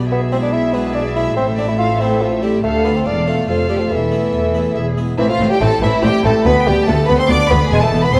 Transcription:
Already playing: B1 B2
0.10 B3 G#4 B4 E5
0.32 G#3 C4 D4 E4 C5
0.42 D4 D5
0.52 E4 E5
0.73 G#3 B3 D4 E4 B4
0.95 D4 D5
1.16 G#3 D4 E4 E5
1.36 A1 A2 C4 A4 C5
1.58 A3 C4 D4 E4 D5
1.69 E4 E5
1.78 F4 F5
2.00 A3 C4 E4 C5
2.22 F3 F4
2.42 G3 A3 C4 E4 G4
2.63 D2 A3 A4 F5
2.85 A3 B3 D4 F4 B4
2.96 C4 C5
3.06 E1 E2 D4 A4 D5 F5
3.27 A3 D4 F4 A4
3.48 F1 F2 F3 F4 A4 F5
3.69 G3 A3 D4 F4 G4
3.80 F3 F4
3.90 E1 E2 E3 E4 A4 E5
4.11 A3 B3 E4
4.33 E2 E3
4.54 A3 B3 E4
4.76 E1 E2 G#4 E5
4.97 G#3 B3 E4
5.18 A1 A2 E3 C4 E4 E5
5.29 F3 F4 F5
5.39 A1 A2 C4
5.50 G3 G4 G5
5.61 A1 A2 A3 C4 E4 A4 A5
5.82 A1 A2 E3 C4 E4 E5
6.03 A1 A2 G3 C4 E4 G4 G5
6.23 A1 A2 A3 C4 A4 A5
6.45 D2 B3 B4 B5
6.66 D2 G3 B3 G4 G5
6.87 D2 A3 B3 D4 F4 A4 A5
7.07 D2 B3 B4 B5
7.17 C4 C5 C6
7.28 D2 B3 D4 F4 D5 D6
7.50 D2 B3 B4 B5
7.70 E1 E2 G#3 B3 G#4 G#5
7.81 A3 A4 A5
7.92 E1 E2 B3
8.03 B3 B4 B5
8.13 E1 E2 B3 C4 E4 C5 C6

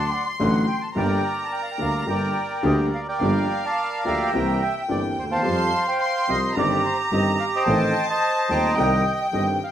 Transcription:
Already playing: D5 F#5 A5 C6
0.09 G5
0.14 F#5
0.26 D5
0.39 A1 A2 D3 F#3 A3 F#4 F#5
0.67 G5
0.82 A5
0.94 G1 G2 D3 G3 A#3 G4 A#4 D5 G5 A#5
1.44 A5
1.52 G5
1.62 F5
1.71 G5
1.78 D2 D3 G3 A#3 G4 F5
2.06 G1 G2 D3 G3 A#3 G4 D5 G5
2.10 A#4
2.63 D2 D3 G3 A#3 G4 D#5
2.94 F5
3.09 A#4 D5 G5
3.20 G1 G2 F3 A#3 D4 G4 F5
3.65 D5 F5 A5
4.04 D2 D3 F3 A#3 D4 G4 E5 G5 A#5
4.32 C2 C3 E3 A#3 C4 G4 G5
4.62 G5
4.77 E5
4.88 G1 G2 E3 A#3 C4 G4 D5
5.18 D#2 C5
5.23 D2
5.30 D#2 C5 F5 A5
5.36 E2
5.42 F2 F3 G3 C4 G4 C6
5.88 C5 G5
5.99 C6
6.28 C2 C3 F3 G3 C4 G4 D#5
6.54 G1 G2 D#3 G3 C4 G4 A#5
6.58 G4 D5
6.86 C5
7.11 G1 G2 D#3 G3 C4 G4 D#5
7.40 F5
7.56 C5 D#5 G5
7.65 A1 A2 D#3 A3 C4 A4 A5
8.10 C5 D#5 A5
8.49 D#1 D#2 D#3 A3 C4 A4 D#5 G5 A#5
8.76 C2 C3 D#3 G3 C4 G4 G5
9.08 G5
9.21 D#5
9.32 G1 G2 D#3 G3 C4 G4 D#5
9.64 F5

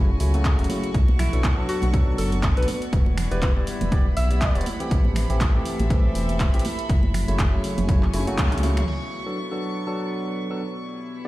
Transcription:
Already playing: F#1 C#4 F#4 A4 E5 F#5 G#5 C#6
0.20 C#2 C#3 F#3 A3 E4, open hi-hat
0.34 C#3 F#3 A3 F#4, closed hi-hat, high conga
0.45 kick, clap, closed hi-hat
0.59 F#1, closed hi-hat
0.64 closed hi-hat
0.70 C#3 F#3 A3 E4, open hi-hat, high conga
0.84 closed hi-hat
0.94 B1 B3 D5 F#5, kick, closed hi-hat
1.08 high conga
1.19 E4, finger snap, open hi-hat, low conga
1.33 B1 F#3 B3 D4 A4, closed hi-hat
1.44 kick, clap, closed hi-hat, high conga
1.58 F#3 B3 D4 A4
1.69 F#4, open hi-hat
1.82 B1 F#4, closed hi-hat, high conga
1.94 F#3 B3 D4 A4, kick, closed hi-hat
2.18 F#1 A4, open hi-hat
2.32 closed hi-hat, high conga
2.43 kick, clap, closed hi-hat
2.57 B1 F#3 B3 D4 A4 B4, closed hi-hat
2.63 closed hi-hat
2.68 open hi-hat, high conga
2.82 closed hi-hat
2.93 E1 G3 E4 E5, kick, closed hi-hat
3.06 high conga
3.17 finger snap, open hi-hat, low conga
3.31 E1 B3 E4 G4 B4 D5, closed hi-hat
3.42 B4, kick, clap, closed hi-hat, high conga
3.56 B3 E4 G4 D5
3.67 B5, open hi-hat
3.81 E1 F#5, closed hi-hat, high conga, low conga
3.92 B3 E4 G4 D5, kick, closed hi-hat
4.17 B1 E5, open hi-hat
4.31 B3 E4 G4 D5, closed hi-hat, high conga
4.41 kick, clap, closed hi-hat
4.55 E1 B3 E4 G4 D5, closed hi-hat
4.61 closed hi-hat
4.66 open hi-hat, high conga
4.80 E3 A3 C4 G4, closed hi-hat
4.91 A1 A3 G4 A4 C5 E5, kick, closed hi-hat
5.05 high conga
5.12 E5, finger snap, open hi-hat, low conga
5.30 A1 E3 A3 C4 G4, closed hi-hat
5.41 kick, clap, closed hi-hat, high conga
5.55 E3 A3 C4 G4
5.66 open hi-hat
5.79 A1 B5, closed hi-hat, high conga
5.90 E3 A3 C4 G4, kick, closed hi-hat
6.15 E1, open hi-hat
6.29 closed hi-hat, high conga
6.40 kick, clap, closed hi-hat
6.54 A1 E3 A3 C4 G4, closed hi-hat
6.59 closed hi-hat
6.65 open hi-hat, high conga
6.79 closed hi-hat
6.89 F#1 F#4 C#5 E5, kick, closed hi-hat
7.03 high conga
7.14 finger snap, open hi-hat, low conga
7.27 F#1 C#3 F#3 A3 E4 C#6, closed hi-hat
7.39 kick, clap, closed hi-hat, high conga
7.53 C#3 F#3 A3 E4
7.64 open hi-hat
7.78 F#1 G#5, closed hi-hat, high conga, low conga
7.89 C#3 F#3 A3 E4, kick, closed hi-hat
8.03 clap
8.13 F#1 C#3 F#3 A3 E4, open hi-hat, high tom
8.27 C#3 F#3 A3 F#4, closed hi-hat, high conga
8.38 kick, clap, closed hi-hat, mid tom
8.52 C#2, closed hi-hat, mid tom
8.58 closed hi-hat
8.63 C#3 F#3 A3 E4, open hi-hat, high conga
8.77 finger snap, closed hi-hat, mid tom
8.88 B3 F#4 A4 D5 F#5, crash
9.27 F#3 B3 D4 A4
9.51 F#3 B3 D4 A4
9.87 F#3 B3 D4 A4
10.51 F#3 B3 D4 A4
10.86 E4 G4 G5
11.17 B5

